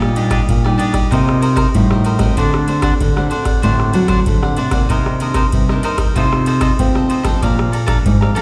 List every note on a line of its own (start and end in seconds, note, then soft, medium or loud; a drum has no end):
0.00 0.39 A#2 medium
0.00 0.45 A#2 medium
0.00 0.11 G3 medium
0.00 0.11 D4 medium
0.00 0.11 D#4 medium
0.00 0.15 G4 medium
0.00 0.17 D5 medium
0.00 0.16 D#5 medium
0.00 cross-stick medium
0.15 0.46 G3 medium
0.15 0.29 D4 soft
0.15 0.46 D4 medium
0.15 0.47 D#4 medium
0.15 0.29 G4 soft
0.15 0.30 D5 soft
0.15 0.30 D#5 soft
0.15 ride soft
0.30 0.40 D4 medium
0.30 0.41 G4 medium
0.30 0.41 D5 medium
0.30 0.41 D#5 medium
0.30 kick medium
0.30 cross-stick medium
0.30 ride soft
0.49 0.75 A#2 medium
0.49 1.09 A#2 medium
0.49 kick medium
0.49 ride soft
0.64 1.07 G3 medium
0.64 1.07 D4 medium
0.64 1.07 D#4 medium
0.64 0.77 G4 soft
0.64 0.79 D5 soft
0.64 0.78 D#5 soft
0.64 cross-stick medium
0.78 0.93 D4 medium
0.78 0.94 G4 medium
0.78 0.91 D5 medium
0.78 0.93 D#5 medium
0.78 ride medium
0.93 1.10 G4 soft
0.93 1.09 D5 soft
0.93 1.09 D#5 soft
0.93 kick medium
0.93 cross-stick medium
0.93 ride soft
1.11 1.65 C3 medium
1.11 1.72 C3 medium
1.11 1.52 A#3 medium
1.11 1.39 D#4 medium
1.11 1.53 D#4 medium
1.11 1.53 F4 medium
1.11 1.40 A#4 medium
1.11 1.41 C5 medium
1.11 1.41 D#5 medium
1.11 kick medium
1.11 ride medium
1.29 cross-stick medium
1.41 1.54 D#4 soft
1.41 1.55 A#4 soft
1.41 1.55 C5 medium
1.41 1.56 D#5 medium
1.41 ride medium
1.56 1.66 D#4 medium
1.56 1.67 A#4 medium
1.56 1.67 C5 medium
1.56 1.67 D#5 medium
1.56 kick medium
1.56 cross-stick medium
1.56 ride soft
1.74 2.28 A2 medium
1.74 2.34 G3 medium
1.74 2.17 D#4 medium
1.74 2.17 F4 medium
1.74 kick medium
1.74 ride soft
1.90 2.04 A#4 soft
1.90 2.05 C5 soft
1.90 2.05 D#5 soft
1.90 cross-stick medium
2.04 2.20 D#4 soft
2.04 2.20 A#4 soft
2.04 2.19 C5 medium
2.04 2.18 D#5 medium
2.04 ride soft
2.19 2.63 A3 medium
2.19 2.63 C4 medium
2.19 2.63 F#4 medium
2.19 2.36 A#4 soft
2.19 2.35 C5 medium
2.19 2.35 D#5 medium
2.19 kick medium
2.19 cross-stick medium
2.19 ride soft
2.37 2.91 D3 medium
2.37 2.98 D3 medium
2.37 2.66 D4 medium
2.37 2.67 C5 medium
2.37 2.68 D5 medium
2.37 2.69 F#5 medium
2.37 kick medium
2.37 ride soft
2.54 cross-stick medium
2.67 2.98 A3 medium
2.67 2.98 C4 medium
2.67 2.81 D4 soft
2.67 2.98 F#4 medium
2.67 2.81 C5 soft
2.67 2.82 D5 soft
2.67 2.82 F#5 medium
2.67 ride soft
2.82 2.93 D4 medium
2.82 2.93 C5 medium
2.82 2.93 D5 medium
2.82 2.93 F#5 medium
2.82 kick medium
2.82 cross-stick medium
2.82 ride soft
3.00 3.60 A2 medium
3.00 3.28 D3 medium
3.00 kick medium
3.00 ride soft
3.16 3.59 A3 medium
3.16 3.59 C4 medium
3.16 3.59 F#4 medium
3.16 3.30 C5 soft
3.16 3.30 D5 soft
3.16 3.31 F#5 soft
3.16 cross-stick medium
3.30 3.46 D4 medium
3.30 3.46 C5 medium
3.30 3.45 D5 medium
3.30 3.43 F#5 medium
3.30 ride soft
3.45 3.62 C5 soft
3.45 3.61 D5 soft
3.45 3.61 F#5 soft
3.45 kick medium
3.45 cross-stick medium
3.45 ride soft
3.62 3.90 A2 medium
3.62 4.24 D3 medium
3.62 4.22 A3 medium
3.62 4.22 C4 medium
3.62 3.92 D4 medium
3.62 4.22 F#4 medium
3.62 3.93 C5 medium
3.62 3.93 D5 medium
3.62 3.94 F#5 medium
3.62 kick medium
3.62 ride soft
3.80 cross-stick medium
3.93 4.23 F#3 medium
3.93 4.07 D4 soft
3.93 4.08 C5 soft
3.93 4.08 D5 soft
3.93 4.08 F#5 soft
3.93 ride soft
4.08 4.19 D4 medium
4.08 4.19 C5 medium
4.08 4.19 D5 medium
4.08 4.19 F#5 medium
4.08 kick medium
4.08 cross-stick medium
4.08 ride soft
4.26 4.87 A2 soft
4.26 4.55 D3 medium
4.26 4.57 A3 medium
4.26 4.57 C4 soft
4.26 4.57 F#4 medium
4.26 kick medium
4.26 ride soft
4.42 4.56 C5 soft
4.42 4.57 D5 soft
4.42 4.57 F#5 soft
4.42 cross-stick medium
4.57 4.86 C3 medium
4.57 4.72 D4 soft
4.57 4.73 C5 medium
4.57 4.71 D5 medium
4.57 4.70 F#5 medium
4.57 ride soft
4.71 5.15 D#3 medium
4.71 5.16 A#3 medium
4.71 5.16 D4 medium
4.71 4.88 C5 soft
4.71 4.88 D5 medium
4.71 4.87 F#5 medium
4.71 kick medium
4.71 cross-stick medium
4.71 ride soft
4.89 5.44 C3 medium
4.89 5.50 C3 medium
4.89 5.19 D#4 medium
4.89 5.19 A#4 medium
4.89 5.20 C5 medium
4.89 5.21 D#5 medium
4.89 kick medium
4.89 ride soft
5.06 cross-stick medium
5.20 5.63 D#3 medium
5.20 5.64 A#3 soft
5.20 5.64 D4 medium
5.20 5.33 D#4 soft
5.20 5.34 A#4 soft
5.20 5.35 C5 soft
5.20 5.35 D#5 medium
5.20 ride soft
5.34 5.45 D#4 medium
5.34 5.45 A#4 medium
5.34 5.46 C5 medium
5.34 5.46 D#5 medium
5.34 kick medium
5.34 cross-stick medium
5.34 ride soft
5.52 6.13 G2 medium
5.52 5.80 C3 medium
5.52 kick medium
5.52 ride soft
5.69 6.12 D#3 medium
5.69 6.12 A#3 medium
5.69 6.12 D4 medium
5.69 5.83 A#4 soft
5.69 5.83 C5 soft
5.69 5.83 D#5 soft
5.69 cross-stick medium
5.83 5.98 D#4 medium
5.83 5.99 A#4 medium
5.83 5.98 C5 medium
5.83 5.96 D#5 medium
5.83 ride soft
5.98 6.15 A#4 soft
5.98 6.14 C5 soft
5.98 6.14 D#5 soft
5.98 kick medium
5.98 cross-stick medium
5.98 ride soft
6.15 6.70 C3 medium
6.15 6.76 C3 medium
6.15 6.74 A3 medium
6.15 6.75 D#4 medium
6.15 6.45 F4 medium
6.15 6.75 F4 medium
6.15 6.46 A4 medium
6.15 6.46 C5 medium
6.15 6.47 D#5 medium
6.15 kick medium
6.15 ride soft
6.33 cross-stick medium
6.46 6.59 F4 soft
6.46 6.60 A4 soft
6.46 6.60 C5 medium
6.46 6.61 D#5 medium
6.46 ride medium
6.61 6.71 F4 medium
6.61 6.71 A4 medium
6.61 6.71 C5 medium
6.61 6.72 D#5 medium
6.61 kick medium
6.61 cross-stick medium
6.61 ride medium
6.79 7.39 C3 medium
6.79 7.22 A3 medium
6.79 7.33 C4 medium
6.79 7.22 D#4 medium
6.79 7.22 F4 medium
6.79 kick medium
6.79 ride soft
6.95 7.08 A4 soft
6.95 7.09 C5 soft
6.95 7.10 D#5 soft
6.95 cross-stick medium
7.09 7.24 F4 soft
7.09 7.24 A4 medium
7.09 7.23 C5 medium
7.09 7.22 D#5 soft
7.09 ride soft
7.23 7.68 F3 medium
7.23 7.68 A3 medium
7.23 7.69 D4 medium
7.23 7.41 A4 medium
7.23 7.40 C5 medium
7.23 7.40 D#5 medium
7.23 kick medium
7.23 cross-stick medium
7.23 ride soft
7.42 7.96 A#2 medium
7.42 8.03 A#2 medium
7.42 7.72 D5 medium
7.42 7.72 F5 medium
7.42 7.73 A#5 medium
7.42 kick medium
7.42 ride soft
7.59 cross-stick medium
7.72 7.85 A4 soft
7.72 7.86 D5 medium
7.72 7.86 F5 soft
7.72 7.87 A#5 medium
7.72 ride soft
7.86 8.31 F3 medium
7.86 8.31 A3 medium
7.86 8.31 D4 medium
7.86 7.97 A4 medium
7.86 7.97 D5 medium
7.86 7.98 F5 medium
7.86 7.98 A#5 medium
7.86 kick medium
7.86 cross-stick medium
7.86 ride soft
8.05 8.42 F2 medium
8.05 8.33 G#2 medium
8.05 kick medium
8.05 ride soft
8.21 8.35 D5 soft
8.21 8.35 F5 soft
8.21 8.36 A#5 soft
8.21 cross-stick medium
8.35 8.42 F3 medium
8.35 8.42 A3 medium
8.35 8.42 D4 medium
8.35 8.42 A4 medium
8.35 8.42 D5 medium
8.35 8.42 F5 medium
8.35 8.42 A#5 medium
8.35 ride soft